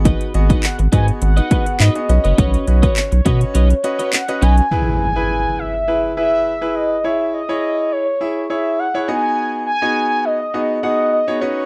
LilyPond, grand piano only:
\new Staff \with { instrumentName = "Grand piano" } { \time 4/4 \key gis \phrygian \tempo 4 = 103 <b fis' gis' dis''>16 r16 <b fis' gis' dis''>8. r16 <b fis' gis' dis''>8. r16 <b fis' gis' b'>8 r16 <b fis' gis' dis''>16 <cis' fis' b' dis''>8~ | <cis' fis' b' dis''>16 r16 <cis' fis' b' dis''>8. r16 <cis' fis' b' dis''>8. r16 <cis' fis' b' dis''>8 r16 <cis' fis' b' dis''>8 r16 | <e' gis' b'>8 r16 <e' gis' b'>4 r16 <e' gis' b'>8 <e' gis' b'>8 r16 <e' gis' b'>8 r16 | <e' gis' cis''>8 r16 <e' gis' cis''>4 r16 <e' gis' e''>8 <e' gis' cis''>8 r16 <e' gis' cis''>16 <b dis' fis' gis' dis''>8~ |
<b dis' fis' gis' dis''>8 r16 <b dis' fis' gis' dis''>4 r16 <b dis' fis' gis' dis''>8 <b dis' fis' gis' fis''>8 r16 <b dis' fis' gis' cis''>16 <cis' dis' fis' b' dis''>8 | }